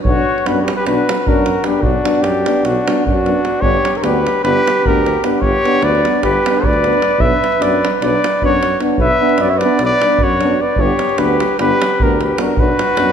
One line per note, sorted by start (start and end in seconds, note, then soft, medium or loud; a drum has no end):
0.03 0.17 B1 medium
0.03 0.22 B3 medium
0.03 0.22 D4 medium
0.03 0.48 F#4 medium
0.03 0.48 C#5 medium
0.03 davul low medium
0.38 davul high soft
0.46 0.68 F#2 medium
0.46 0.62 B3 medium
0.46 0.62 D4 medium
0.46 0.61 F#4 medium
0.46 0.61 B4 medium
0.46 davul high medium
0.61 0.73 G4 medium
0.61 0.75 B4 medium
0.68 davul high medium
0.76 0.87 G4 medium
0.76 0.86 B4 loud
0.85 0.99 B1 medium
0.85 1.02 B3 medium
0.85 1.04 D4 medium
0.85 1.27 F#4 medium
0.85 1.30 B4 medium
0.85 davul high medium
1.09 davul high medium
1.26 1.57 F#2 medium
1.26 1.43 B3 medium
1.26 1.43 D4 medium
1.26 1.67 F#4 medium
1.26 1.67 A#4 medium
1.26 davul low medium
1.46 davul high medium
1.64 1.81 B3 medium
1.64 1.82 D4 medium
1.64 1.85 G4 medium
1.64 1.83 B4 medium
1.64 davul high medium
1.81 1.94 B1 medium
1.81 2.23 D4 medium
1.81 2.23 F#4 medium
1.81 davul low medium
2.05 2.23 B3 medium
2.05 2.22 D4 medium
2.05 davul high medium
2.15 davul high soft
2.22 2.45 F#2 medium
2.22 2.66 D4 medium
2.22 2.66 G4 medium
2.22 davul high medium
2.46 2.64 B3 medium
2.46 2.63 D4 medium
2.46 davul high medium
2.64 2.76 B1 medium
2.64 3.05 D4 medium
2.64 3.06 F#4 loud
2.64 davul high medium
2.87 3.03 B3 medium
2.87 3.03 D4 medium
2.87 davul high medium
3.05 3.36 F#2 medium
3.05 3.63 D4 medium
3.05 3.63 F#4 loud
3.05 davul low medium
3.26 3.40 B3 medium
3.26 3.41 D4 medium
3.26 davul high soft
3.45 davul high medium
3.61 3.74 G1 loud
3.61 3.79 B3 medium
3.61 3.78 D4 medium
3.61 3.98 G4 medium
3.61 3.96 C#5 loud
3.61 davul low medium
3.85 davul high medium
3.95 4.05 A#4 medium
3.95 4.04 C#5 medium
3.95 davul high soft
4.02 4.25 D2 medium
4.02 4.20 B3 medium
4.02 4.18 D4 medium
4.02 4.44 G4 medium
4.02 4.43 B4 loud
4.02 davul high medium
4.27 davul high medium
4.44 4.56 G1 medium
4.44 4.61 B3 medium
4.44 4.61 D4 medium
4.44 4.87 G4 medium
4.44 4.87 B4 loud
4.44 davul high medium
4.68 davul high medium
4.85 5.16 D2 medium
4.85 5.00 B3 medium
4.85 5.00 D4 medium
4.85 5.25 G4 medium
4.85 5.26 A#4 loud
4.85 davul low medium
5.06 davul high medium
5.24 5.40 B3 medium
5.24 5.41 D4 medium
5.24 5.43 G4 medium
5.24 5.43 B4 medium
5.24 davul high medium
5.41 5.54 G1 medium
5.41 5.84 G4 loud
5.41 5.86 C#5 loud
5.41 davul low medium
5.64 5.81 B3 medium
5.64 5.80 D4 medium
5.64 davul high medium
5.75 davul high soft
5.82 6.04 D2 medium
5.82 6.21 B4 medium
5.82 6.24 D5 loud
5.82 davul high medium
5.95 davul high soft
6.05 6.21 B3 medium
6.05 6.22 D4 soft
6.05 davul high medium
6.22 6.36 G1 medium
6.22 6.66 G4 medium
6.22 6.67 B4 loud
6.22 davul high medium
6.22 davul low medium
6.46 6.62 B3 soft
6.46 6.62 D4 soft
6.46 davul high medium
6.54 davul high soft
6.63 6.94 D2 medium
6.63 7.22 B4 medium
6.63 7.22 D5 loud
6.63 davul low medium
6.73 davul high soft
6.84 7.00 B3 medium
6.84 7.00 D4 medium
6.84 davul high medium
6.93 davul high soft
7.02 davul high medium
7.11 davul high soft
7.18 7.31 B1 medium
7.18 7.37 B3 medium
7.18 7.37 D4 medium
7.18 7.64 B4 loud
7.18 7.64 E5 loud
7.18 davul low medium
7.44 davul high medium
7.52 davul high soft
7.60 7.83 F#2 medium
7.60 7.77 B3 medium
7.60 7.79 D4 soft
7.60 7.91 D5 medium
7.60 davul high medium
7.64 8.03 B4 medium
7.85 davul high medium
8.02 8.14 B1 medium
8.02 8.18 B3 medium
8.02 8.19 D4 medium
8.02 8.41 B4 medium
8.02 8.40 D5 loud
8.02 davul high medium
8.24 davul high medium
8.42 8.74 F#2 medium
8.42 8.58 B3 soft
8.42 8.58 D4 medium
8.42 8.80 C#5 loud
8.42 davul low medium
8.46 8.80 F#4 medium
8.63 davul high medium
8.80 8.97 B3 medium
8.80 8.97 D4 medium
8.80 davul high medium
8.98 9.10 B1 medium
8.98 9.41 B4 medium
8.98 9.43 E5 loud
8.98 davul low medium
9.20 9.37 B3 medium
9.20 9.37 D4 medium
9.29 davul high soft
9.38 9.62 F#2 medium
9.38 9.51 B4 medium
9.38 9.52 D5 loud
9.38 davul high medium
9.49 9.59 C#5 medium
9.49 9.59 E5 medium
9.58 9.80 B4 medium
9.58 9.82 D5 loud
9.58 davul high medium
9.62 9.80 B3 medium
9.62 9.79 D4 medium
9.79 9.92 B1 medium
9.79 10.25 B4 medium
9.79 davul high medium
9.85 10.25 D5 loud
10.02 10.20 B3 medium
10.02 10.18 D4 medium
10.02 davul high medium
10.18 10.51 F#2 medium
10.18 davul low medium
10.23 10.62 F#4 medium
10.23 10.63 C#5 loud
10.40 10.58 B3 medium
10.40 10.55 D4 medium
10.40 davul high medium
10.61 10.82 B4 medium
10.61 10.82 D5 medium
10.76 10.90 G1 loud
10.76 10.95 B3 medium
10.76 10.94 D4 medium
10.76 davul low medium
10.80 11.20 G4 medium
10.80 11.20 C#5 loud
10.99 davul high medium
11.09 davul high soft
11.18 11.41 D2 medium
11.18 11.36 B3 medium
11.18 11.34 D4 medium
11.18 11.58 G4 medium
11.18 11.59 B4 medium
11.18 davul high medium
11.40 davul high medium
11.59 11.72 G1 medium
11.59 11.77 B3 medium
11.59 11.76 D4 medium
11.59 12.01 G4 medium
11.59 12.04 B4 loud
11.59 davul high medium
11.82 davul high medium
11.99 12.31 D2 medium
11.99 12.15 B3 medium
11.99 12.17 D4 medium
11.99 12.22 G4 medium
11.99 12.25 A#4 loud
11.99 davul low medium
12.21 12.39 G4 medium
12.21 12.40 B4 medium
12.21 davul high medium
12.38 12.56 B3 medium
12.38 12.55 D4 medium
12.38 12.58 F#4 medium
12.38 davul high medium
12.43 12.61 A#4 medium
12.56 12.69 B1 medium
12.56 12.74 B3 medium
12.56 12.74 D4 medium
12.56 13.12 F#4 medium
12.56 13.12 B4 loud
12.56 davul low medium
12.79 davul high medium
12.97 13.12 F#2 medium
12.97 13.12 B3 medium
12.97 13.12 D4 medium
12.97 davul high medium